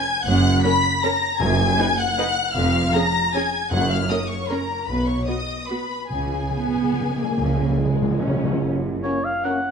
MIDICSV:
0, 0, Header, 1, 9, 480
1, 0, Start_track
1, 0, Key_signature, 6, "major"
1, 0, Tempo, 384123
1, 326, Time_signature, 3, 2, 24, 8
1, 6584, Tempo, 423131
1, 9944, Tempo, 401606
1, 11713, End_track
2, 0, Start_track
2, 0, Title_t, "Violin section"
2, 0, Program_c, 0, 48
2, 0, Note_on_c, 0, 92, 121
2, 315, Note_on_c, 0, 90, 126
2, 324, Note_off_c, 0, 92, 0
2, 795, Note_on_c, 0, 95, 127
2, 796, Note_off_c, 0, 90, 0
2, 1280, Note_off_c, 0, 95, 0
2, 1286, Note_on_c, 0, 94, 115
2, 1751, Note_on_c, 0, 92, 122
2, 1757, Note_off_c, 0, 94, 0
2, 2462, Note_off_c, 0, 92, 0
2, 2478, Note_on_c, 0, 90, 127
2, 3183, Note_on_c, 0, 89, 121
2, 3195, Note_off_c, 0, 90, 0
2, 3669, Note_off_c, 0, 89, 0
2, 3680, Note_on_c, 0, 94, 117
2, 4181, Note_off_c, 0, 94, 0
2, 4186, Note_on_c, 0, 92, 102
2, 4647, Note_on_c, 0, 90, 112
2, 4652, Note_off_c, 0, 92, 0
2, 4872, Note_off_c, 0, 90, 0
2, 4894, Note_on_c, 0, 89, 116
2, 5121, Note_on_c, 0, 87, 106
2, 5130, Note_off_c, 0, 89, 0
2, 5362, Note_on_c, 0, 85, 103
2, 5373, Note_off_c, 0, 87, 0
2, 5617, Note_off_c, 0, 85, 0
2, 5629, Note_on_c, 0, 82, 103
2, 6092, Note_on_c, 0, 83, 96
2, 6104, Note_off_c, 0, 82, 0
2, 6318, Note_on_c, 0, 85, 94
2, 6330, Note_off_c, 0, 83, 0
2, 6575, Note_off_c, 0, 85, 0
2, 6576, Note_on_c, 0, 87, 105
2, 7044, Note_off_c, 0, 87, 0
2, 7053, Note_on_c, 0, 83, 99
2, 7513, Note_on_c, 0, 80, 92
2, 7526, Note_off_c, 0, 83, 0
2, 10137, Note_off_c, 0, 80, 0
2, 10902, Note_on_c, 0, 70, 55
2, 10998, Note_off_c, 0, 70, 0
2, 11382, Note_on_c, 0, 70, 60
2, 11477, Note_off_c, 0, 70, 0
2, 11713, End_track
3, 0, Start_track
3, 0, Title_t, "Oboe"
3, 0, Program_c, 1, 68
3, 10899, Note_on_c, 1, 73, 85
3, 11154, Note_on_c, 1, 77, 96
3, 11172, Note_off_c, 1, 73, 0
3, 11397, Note_on_c, 1, 78, 84
3, 11415, Note_off_c, 1, 77, 0
3, 11713, Note_off_c, 1, 78, 0
3, 11713, End_track
4, 0, Start_track
4, 0, Title_t, "Violin section"
4, 0, Program_c, 2, 48
4, 0, Note_on_c, 2, 80, 115
4, 306, Note_off_c, 2, 80, 0
4, 311, Note_on_c, 2, 78, 126
4, 784, Note_off_c, 2, 78, 0
4, 788, Note_on_c, 2, 83, 126
4, 1277, Note_off_c, 2, 83, 0
4, 1291, Note_on_c, 2, 82, 108
4, 1752, Note_on_c, 2, 80, 127
4, 1760, Note_off_c, 2, 82, 0
4, 2477, Note_off_c, 2, 80, 0
4, 2477, Note_on_c, 2, 78, 117
4, 3194, Note_off_c, 2, 78, 0
4, 3195, Note_on_c, 2, 77, 111
4, 3666, Note_off_c, 2, 77, 0
4, 3677, Note_on_c, 2, 82, 127
4, 4179, Note_off_c, 2, 82, 0
4, 4182, Note_on_c, 2, 80, 103
4, 4631, Note_on_c, 2, 78, 123
4, 4650, Note_off_c, 2, 80, 0
4, 4868, Note_off_c, 2, 78, 0
4, 4870, Note_on_c, 2, 77, 96
4, 4970, Note_off_c, 2, 77, 0
4, 5113, Note_on_c, 2, 75, 101
4, 5213, Note_off_c, 2, 75, 0
4, 5360, Note_on_c, 2, 73, 93
4, 5611, Note_off_c, 2, 73, 0
4, 5626, Note_on_c, 2, 70, 82
4, 6095, Note_on_c, 2, 71, 104
4, 6103, Note_off_c, 2, 70, 0
4, 6328, Note_off_c, 2, 71, 0
4, 6332, Note_on_c, 2, 73, 86
4, 6578, Note_on_c, 2, 75, 87
4, 6583, Note_off_c, 2, 73, 0
4, 7055, Note_off_c, 2, 75, 0
4, 7065, Note_on_c, 2, 71, 76
4, 7523, Note_off_c, 2, 71, 0
4, 7545, Note_on_c, 2, 68, 76
4, 10154, Note_off_c, 2, 68, 0
4, 10915, Note_on_c, 2, 66, 54
4, 11010, Note_off_c, 2, 66, 0
4, 11403, Note_on_c, 2, 66, 59
4, 11499, Note_off_c, 2, 66, 0
4, 11713, End_track
5, 0, Start_track
5, 0, Title_t, "Viola section"
5, 0, Program_c, 3, 48
5, 799, Note_on_c, 3, 70, 84
5, 800, Note_on_c, 3, 61, 80
5, 899, Note_off_c, 3, 70, 0
5, 900, Note_off_c, 3, 61, 0
5, 1299, Note_on_c, 3, 70, 84
5, 1304, Note_on_c, 3, 61, 85
5, 1399, Note_off_c, 3, 70, 0
5, 1404, Note_off_c, 3, 61, 0
5, 2236, Note_on_c, 3, 71, 75
5, 2237, Note_on_c, 3, 63, 82
5, 2336, Note_off_c, 3, 71, 0
5, 2337, Note_off_c, 3, 63, 0
5, 2726, Note_on_c, 3, 63, 81
5, 2730, Note_on_c, 3, 71, 80
5, 2826, Note_off_c, 3, 63, 0
5, 2830, Note_off_c, 3, 71, 0
5, 3684, Note_on_c, 3, 68, 74
5, 3685, Note_on_c, 3, 61, 76
5, 3784, Note_off_c, 3, 68, 0
5, 3785, Note_off_c, 3, 61, 0
5, 4184, Note_on_c, 3, 68, 72
5, 4185, Note_on_c, 3, 61, 77
5, 4284, Note_off_c, 3, 68, 0
5, 4285, Note_off_c, 3, 61, 0
5, 5140, Note_on_c, 3, 70, 68
5, 5142, Note_on_c, 3, 61, 76
5, 5240, Note_off_c, 3, 70, 0
5, 5242, Note_off_c, 3, 61, 0
5, 5635, Note_on_c, 3, 61, 72
5, 5636, Note_on_c, 3, 70, 65
5, 5735, Note_off_c, 3, 61, 0
5, 5736, Note_off_c, 3, 70, 0
5, 6588, Note_on_c, 3, 59, 65
5, 6588, Note_on_c, 3, 66, 59
5, 6679, Note_off_c, 3, 59, 0
5, 6679, Note_off_c, 3, 66, 0
5, 7072, Note_on_c, 3, 66, 60
5, 7073, Note_on_c, 3, 59, 59
5, 7163, Note_off_c, 3, 66, 0
5, 7164, Note_off_c, 3, 59, 0
5, 8011, Note_on_c, 3, 59, 81
5, 8701, Note_off_c, 3, 59, 0
5, 8740, Note_on_c, 3, 58, 67
5, 9447, Note_on_c, 3, 56, 62
5, 9450, Note_off_c, 3, 58, 0
5, 9931, Note_off_c, 3, 56, 0
5, 9945, Note_on_c, 3, 61, 66
5, 10428, Note_off_c, 3, 61, 0
5, 10903, Note_on_c, 3, 61, 58
5, 10999, Note_off_c, 3, 61, 0
5, 11395, Note_on_c, 3, 61, 54
5, 11491, Note_off_c, 3, 61, 0
5, 11713, End_track
6, 0, Start_track
6, 0, Title_t, "French horn section"
6, 0, Program_c, 4, 60
6, 10914, Note_on_c, 4, 61, 53
6, 10915, Note_on_c, 4, 58, 60
6, 11089, Note_off_c, 4, 58, 0
6, 11089, Note_off_c, 4, 61, 0
6, 11399, Note_on_c, 4, 61, 60
6, 11405, Note_on_c, 4, 58, 60
6, 11565, Note_off_c, 4, 61, 0
6, 11570, Note_off_c, 4, 58, 0
6, 11713, End_track
7, 0, Start_track
7, 0, Title_t, "Timpani"
7, 0, Program_c, 5, 47
7, 1749, Note_on_c, 5, 42, 126
7, 2426, Note_off_c, 5, 42, 0
7, 4640, Note_on_c, 5, 42, 113
7, 5320, Note_off_c, 5, 42, 0
7, 7529, Note_on_c, 5, 49, 47
7, 7603, Note_off_c, 5, 49, 0
7, 7616, Note_on_c, 5, 49, 48
7, 7690, Note_off_c, 5, 49, 0
7, 7704, Note_on_c, 5, 49, 39
7, 7771, Note_off_c, 5, 49, 0
7, 7784, Note_on_c, 5, 49, 45
7, 7870, Note_off_c, 5, 49, 0
7, 7883, Note_on_c, 5, 49, 44
7, 7959, Note_off_c, 5, 49, 0
7, 7973, Note_on_c, 5, 49, 45
7, 8063, Note_off_c, 5, 49, 0
7, 8076, Note_on_c, 5, 49, 45
7, 8162, Note_off_c, 5, 49, 0
7, 8175, Note_on_c, 5, 49, 44
7, 8257, Note_off_c, 5, 49, 0
7, 8270, Note_on_c, 5, 49, 48
7, 8346, Note_off_c, 5, 49, 0
7, 8360, Note_on_c, 5, 49, 46
7, 8446, Note_off_c, 5, 49, 0
7, 8458, Note_on_c, 5, 49, 57
7, 8541, Note_off_c, 5, 49, 0
7, 8554, Note_on_c, 5, 49, 59
7, 8623, Note_off_c, 5, 49, 0
7, 8637, Note_on_c, 5, 49, 59
7, 8713, Note_off_c, 5, 49, 0
7, 8726, Note_on_c, 5, 49, 56
7, 8799, Note_off_c, 5, 49, 0
7, 8813, Note_on_c, 5, 49, 69
7, 8881, Note_off_c, 5, 49, 0
7, 8894, Note_on_c, 5, 49, 62
7, 8963, Note_off_c, 5, 49, 0
7, 8976, Note_on_c, 5, 49, 79
7, 9052, Note_off_c, 5, 49, 0
7, 9066, Note_on_c, 5, 49, 77
7, 9150, Note_off_c, 5, 49, 0
7, 9165, Note_on_c, 5, 49, 79
7, 9231, Note_off_c, 5, 49, 0
7, 9245, Note_on_c, 5, 49, 75
7, 9322, Note_off_c, 5, 49, 0
7, 9335, Note_on_c, 5, 49, 80
7, 9412, Note_off_c, 5, 49, 0
7, 9426, Note_on_c, 5, 49, 84
7, 9508, Note_off_c, 5, 49, 0
7, 9522, Note_on_c, 5, 49, 85
7, 9601, Note_off_c, 5, 49, 0
7, 9615, Note_on_c, 5, 49, 82
7, 9693, Note_off_c, 5, 49, 0
7, 9706, Note_on_c, 5, 49, 88
7, 9790, Note_off_c, 5, 49, 0
7, 9804, Note_on_c, 5, 49, 94
7, 9891, Note_off_c, 5, 49, 0
7, 9906, Note_on_c, 5, 49, 102
7, 9983, Note_off_c, 5, 49, 0
7, 9998, Note_on_c, 5, 49, 104
7, 10071, Note_off_c, 5, 49, 0
7, 10086, Note_on_c, 5, 49, 91
7, 10173, Note_off_c, 5, 49, 0
7, 10190, Note_on_c, 5, 49, 101
7, 10263, Note_off_c, 5, 49, 0
7, 10278, Note_on_c, 5, 49, 113
7, 10357, Note_off_c, 5, 49, 0
7, 11713, End_track
8, 0, Start_track
8, 0, Title_t, "Cello section"
8, 0, Program_c, 6, 48
8, 322, Note_on_c, 6, 42, 105
8, 717, Note_off_c, 6, 42, 0
8, 1766, Note_on_c, 6, 42, 94
8, 2154, Note_off_c, 6, 42, 0
8, 3194, Note_on_c, 6, 41, 97
8, 3591, Note_off_c, 6, 41, 0
8, 4653, Note_on_c, 6, 42, 93
8, 5041, Note_off_c, 6, 42, 0
8, 6106, Note_on_c, 6, 47, 72
8, 6502, Note_off_c, 6, 47, 0
8, 7531, Note_on_c, 6, 49, 66
8, 7929, Note_off_c, 6, 49, 0
8, 8977, Note_on_c, 6, 49, 63
8, 9371, Note_off_c, 6, 49, 0
8, 10429, Note_on_c, 6, 42, 66
8, 10823, Note_off_c, 6, 42, 0
8, 11713, End_track
9, 0, Start_track
9, 0, Title_t, "Double bass section"
9, 0, Program_c, 7, 48
9, 323, Note_on_c, 7, 30, 111
9, 717, Note_off_c, 7, 30, 0
9, 1763, Note_on_c, 7, 30, 114
9, 2152, Note_off_c, 7, 30, 0
9, 3194, Note_on_c, 7, 29, 99
9, 3591, Note_off_c, 7, 29, 0
9, 4649, Note_on_c, 7, 30, 92
9, 5039, Note_off_c, 7, 30, 0
9, 6104, Note_on_c, 7, 35, 82
9, 6501, Note_off_c, 7, 35, 0
9, 7526, Note_on_c, 7, 37, 77
9, 7926, Note_off_c, 7, 37, 0
9, 8977, Note_on_c, 7, 37, 69
9, 9370, Note_off_c, 7, 37, 0
9, 10429, Note_on_c, 7, 30, 71
9, 10823, Note_off_c, 7, 30, 0
9, 11713, End_track
0, 0, End_of_file